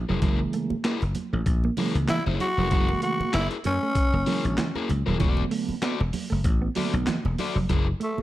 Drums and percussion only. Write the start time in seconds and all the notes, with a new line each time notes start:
0.22 kick, closed hi-hat, muted conga
0.53 closed hi-hat
0.70 high conga
0.84 snare, clap, closed hi-hat, muted conga
1.01 closed hi-hat, muted conga
1.15 closed hi-hat, high conga, low conga
1.46 kick, closed hi-hat, muted conga
1.64 muted conga
1.77 open hi-hat, high conga
1.95 closed hi-hat
2.08 snare, clap, closed hi-hat, high conga
2.26 muted conga, high conga
2.40 closed hi-hat, low conga
2.71 kick, closed hi-hat
2.89 muted conga
3.02 closed hi-hat
3.21 high conga
3.33 snare, clap, closed hi-hat, muted conga
3.51 closed hi-hat, muted conga
3.64 closed hi-hat, high conga, low conga
3.95 kick, closed hi-hat
4.26 open hi-hat, high conga
4.45 closed hi-hat
4.58 snare, clap, closed hi-hat, muted conga, high conga
4.75 muted conga, high conga
4.89 closed hi-hat, low conga
5.20 kick, closed hi-hat, muted conga, low conga
5.37 muted conga
5.51 open hi-hat
5.69 high conga
5.82 snare, clap, closed hi-hat, muted conga
6.00 muted conga
6.13 open hi-hat, high conga, low conga
6.44 kick, closed hi-hat, muted conga
6.75 open hi-hat, high conga
6.94 closed hi-hat
7.07 snare, clap, closed hi-hat, muted conga, high conga
7.25 muted conga, high conga
7.38 open hi-hat, low conga
7.69 kick, closed hi-hat
8.01 closed hi-hat
8.18 high conga